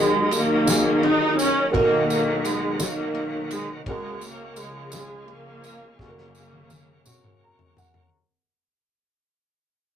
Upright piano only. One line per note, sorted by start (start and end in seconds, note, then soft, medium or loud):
0.00 1.70 D#2 medium
0.00 1.70 D#3 medium
0.00 0.37 D#4 medium
0.00 0.38 F#4 medium
0.00 0.39 A#4 medium
0.65 1.43 D#4 medium
0.65 1.44 F#4 medium
0.65 1.45 G#4 medium
1.71 3.82 B1 medium
1.71 3.82 B2 medium
1.71 2.50 A#3 medium
1.71 2.50 D#4 medium
1.71 2.50 F#4 medium
1.71 2.51 A#4 medium
1.71 2.51 D#5 loud
2.78 3.56 A#3 medium
2.78 3.57 D#4 medium
2.78 3.57 F#4 medium
2.78 3.58 A#4 medium
2.78 3.58 C#5 medium
3.87 4.90 C#2 medium
3.87 4.90 C#3 medium
3.87 4.64 C#4 medium
3.87 4.65 F#4 medium
3.87 4.65 A#4 loud
4.93 5.96 C#2 medium
4.93 5.96 C#3 medium
4.93 5.70 C#4 medium
4.93 5.71 F4 medium
4.93 5.71 G#4 medium
6.00 8.10 F#1 medium
6.00 8.09 F#2 medium
6.00 6.77 C#4 medium
6.00 6.78 F#4 medium
6.00 6.08 A4 medium
6.09 6.81 A#4 medium
7.05 7.83 C#4 medium
7.05 7.83 F#4 medium
7.05 7.84 C#5 medium
7.44 7.76 A#5 medium
7.78 8.11 F#5 medium